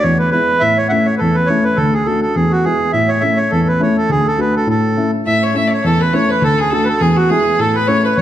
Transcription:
0.02 grand piano E2, accordion C#5
0.19 accordion B4
0.31 grand piano G#3 B3 E4, accordion B4
0.60 grand piano A2, accordion E5
0.77 accordion C#5
0.89 grand piano A3 C#4 E4, accordion E5 F#5
1.05 accordion C#5
1.17 grand piano E2, accordion A4 B4
1.34 accordion B4
1.46 grand piano A3 C#4 E4, accordion C#5
1.64 accordion B4
1.76 grand piano D2, accordion A4
1.93 accordion G#4
2.05 grand piano A3 D4 F#4, accordion A4
2.22 accordion A4
2.35 grand piano E2, accordion G#4
2.51 accordion F#4
2.64 grand piano G#3 B3 E4, accordion G#4
2.92 grand piano A2, accordion E5
3.08 accordion C#5
3.20 grand piano A3 C#4 E4, accordion E5
3.37 accordion C#5
3.50 grand piano E2, accordion A4
3.68 accordion B4
3.80 grand piano A3 C#4 E4, accordion C#5
3.97 accordion A4
4.09 grand piano D2, accordion G#4
4.27 accordion A4
4.37 grand piano A3 D4 F#4, accordion B4
4.57 accordion A4
4.67 grand piano A2, accordion A4
4.97 grand piano A3 C#4 E4
5.26 grand piano A2, fiddle E5, accordion E5
5.43 fiddle C#5, accordion C#5
5.54 grand piano A3 C#4 E4, fiddle E5, accordion E5
5.67 fiddle C#5 D5
5.73 accordion C#5
5.84 grand piano E2, fiddle A4, accordion A4
6.01 fiddle B4, accordion B4
6.12 grand piano A3 C#4 E4, fiddle C#5, accordion C#5
6.29 fiddle B4, accordion B4
6.42 grand piano D2, fiddle A4, accordion A4
6.58 fiddle G#4, accordion G#4
6.70 grand piano A3 D4 F#4, fiddle A4, accordion A4
6.84 accordion B4
6.88 accordion A4
7.00 grand piano E2, fiddle G#4, accordion G#4
7.16 accordion F#4, fiddle F#4
7.29 grand piano G#3 B3 E4, fiddle G#4, accordion G#4
7.59 grand piano A2, fiddle A4, accordion A4
7.75 fiddle B4, accordion B4
7.88 grand piano A3 C#4 E4, accordion C#5, fiddle C#5
8.05 fiddle B4, accordion B4
8.17 grand piano E2, accordion C#5, fiddle C#5

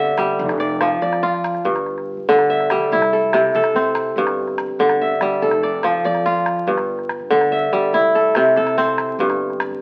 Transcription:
Already playing: upright bass G1, kora G2 D3 C4 E5
0.18 upright bass G1, kora G3, calabash thump, calabash click
0.39 upright bass F1
0.49 calabash click
0.60 kora D5, calabash click
0.70 calabash thump
0.81 kora F3, calabash click
1.02 upright bass F2, kora D5
1.13 calabash click
1.23 kora F4, calabash thump
1.34 calabash click
1.44 calabash click
1.55 calabash click
1.65 upright bass G1, kora G2, calabash thump
1.76 calabash click
1.86 calabash click
1.98 calabash click
2.17 calabash thump
2.29 upright bass G1, kora D3
2.39 calabash click
2.50 kora E5
2.60 calabash click
2.70 upright bass B1, kora G3, calabash thump, calabash click
2.81 calabash click
2.92 upright bass C2, kora E4
3.02 calabash click
3.13 kora A4
3.23 calabash thump
3.33 kora C3, calabash click
3.54 upright bass C3, kora A4
3.64 calabash click
3.74 kora C4, calabash thump
3.95 calabash click
4.16 upright bass G1, kora G2, calabash thump
4.27 calabash click
4.48 calabash click
4.58 calabash click
4.68 calabash thump
4.79 upright bass G1, kora D3
4.89 calabash click
5.01 kora E5
5.21 upright bass G1, kora G3, calabash thump, calabash click
5.42 upright bass F1, kora A4
5.51 calabash click
5.63 kora D5, calabash click
5.72 calabash thump
5.83 kora F3, calabash click
6.04 upright bass F2, kora D5
6.15 calabash click
6.25 kora F4, calabash thump
6.36 calabash click
6.46 calabash click
6.57 calabash click
6.67 upright bass G1, kora G2, calabash thump
6.78 calabash click
6.99 calabash click
7.09 calabash click
7.19 calabash thump
7.30 upright bass G1, kora D3
7.41 calabash click
7.52 kora E5
7.72 upright bass G1, kora G3, calabash thump
7.93 upright bass C2, kora E4
8.14 kora A4, calabash click
8.24 calabash thump
8.35 kora C3, calabash click
8.56 upright bass C3, kora A4
8.67 calabash click
8.77 kora C4, calabash thump
8.88 calabash click
8.98 calabash click
9.09 calabash click
9.19 upright bass G1, kora G2, calabash thump
9.30 calabash click
9.50 calabash click
9.60 calabash click
9.71 calabash thump

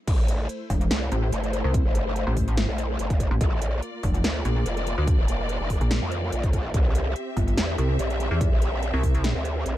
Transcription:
0.07 wobble bass A1, string section A3 E4 C5, kick, closed hi-hat, crash
0.28 closed hi-hat
0.49 closed hi-hat
0.70 wobble bass E1, kick, open hi-hat
0.81 closed hi-hat
0.91 wobble bass C2, snare, closed hi-hat
1.12 wobble bass A1, closed hi-hat
1.32 wobble bass G1, closed hi-hat
1.44 closed hi-hat
1.53 closed hi-hat
1.64 wobble bass C2
1.74 kick, closed hi-hat
1.85 wobble bass G1
1.95 closed hi-hat
2.16 closed hi-hat
2.27 wobble bass A1
2.37 kick, open hi-hat
2.48 closed hi-hat
2.58 snare, closed hi-hat
2.69 wobble bass A#1
2.78 closed hi-hat
2.99 wobble bass G1, closed hi-hat
3.10 kick, closed hi-hat
3.20 kick, closed hi-hat
3.31 wobble bass A1
3.41 wobble bass A#1, string section A#3 F4 D5, kick, closed hi-hat
3.62 closed hi-hat
3.82 closed hi-hat
4.03 wobble bass F1, kick, open hi-hat
4.14 closed hi-hat
4.24 wobble bass D2, snare, closed hi-hat
4.45 wobble bass A#1, closed hi-hat
4.66 wobble bass F1, closed hi-hat
4.77 closed hi-hat
4.87 closed hi-hat
4.98 wobble bass D2
5.07 kick, closed hi-hat
5.19 wobble bass F1
5.28 closed hi-hat
5.49 closed hi-hat
5.60 wobble bass F1
5.70 kick, open hi-hat
5.81 wobble bass A#1, closed hi-hat
5.91 snare, closed hi-hat
6.02 wobble bass F2
6.12 closed hi-hat
6.32 wobble bass A#1, closed hi-hat
6.43 kick, closed hi-hat
6.53 kick, closed hi-hat
6.74 wobble bass C2, string section C4 G4 E5, kick, closed hi-hat
6.95 closed hi-hat
7.16 closed hi-hat
7.37 wobble bass G1, kick, open hi-hat
7.48 closed hi-hat
7.57 wobble bass E2, snare, closed hi-hat
7.78 wobble bass C2, closed hi-hat
7.99 wobble bass A#1, closed hi-hat
8.10 closed hi-hat
8.20 closed hi-hat
8.31 wobble bass E2
8.41 kick, closed hi-hat
8.52 wobble bass A#1
8.62 closed hi-hat
8.83 closed hi-hat
8.94 wobble bass C2
9.03 kick, open hi-hat
9.14 closed hi-hat
9.24 snare, closed hi-hat
9.35 wobble bass D2
9.45 closed hi-hat
9.66 wobble bass A#1, closed hi-hat

